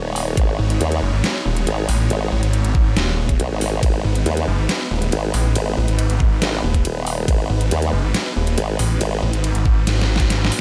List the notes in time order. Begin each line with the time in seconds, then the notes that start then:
Already playing: D#1 G#3 B3 D#4 C#5
0.16 open hi-hat
0.37 G#1, kick, closed hi-hat
0.59 G#1
0.70 closed hi-hat
0.80 D#2, closed hi-hat
0.92 closed hi-hat
1.02 F#1
1.13 G#1
1.24 snare, closed hi-hat
1.45 D#1
1.57 closed hi-hat
1.67 G#1, closed hi-hat
1.88 A1, open hi-hat
2.10 G#1, closed hi-hat
2.32 A1
2.43 G#1, closed hi-hat
2.53 closed hi-hat
2.64 G#1, closed hi-hat
2.75 kick
2.96 D#1, snare, closed hi-hat
3.29 kick, closed hi-hat
3.40 B1, closed hi-hat
3.51 G#1
3.61 open hi-hat
3.83 G#1 B4, kick, closed hi-hat, ride
4.04 G#1
4.15 closed hi-hat
4.26 D#2, closed hi-hat, ride
4.37 closed hi-hat
4.48 F#1
4.59 G#1
4.69 snare, closed hi-hat, ride
4.91 D#1
5.02 closed hi-hat
5.12 G#1, closed hi-hat, ride
5.34 A1, open hi-hat
5.55 G#1, closed hi-hat, ride
5.77 A1
5.88 G#1, closed hi-hat
5.99 closed hi-hat, ride
6.10 G#1, closed hi-hat
6.20 kick
6.42 G#1, snare, closed hi-hat, ride
6.63 D#1
6.74 kick, closed hi-hat
6.85 D#1, closed hi-hat, ride
7.07 open hi-hat
7.28 G#1, kick, closed hi-hat, ride
7.50 G#1
7.61 closed hi-hat
7.71 D#2, closed hi-hat, ride
7.82 closed hi-hat
7.93 F#1
8.04 G#1
8.14 snare, closed hi-hat, ride
8.36 D#1
8.47 closed hi-hat
8.58 G#1, closed hi-hat, ride
8.79 A1, open hi-hat
9.01 G#1, closed hi-hat, ride
9.22 A1
9.33 G#1, closed hi-hat
9.44 closed hi-hat, ride
9.55 G#1, closed hi-hat
9.66 kick
9.87 G#1, snare, closed hi-hat, ride
10.02 snare
10.16 G#1, kick, snare, closed hi-hat
10.30 snare, closed hi-hat, ride
10.45 snare
10.52 open hi-hat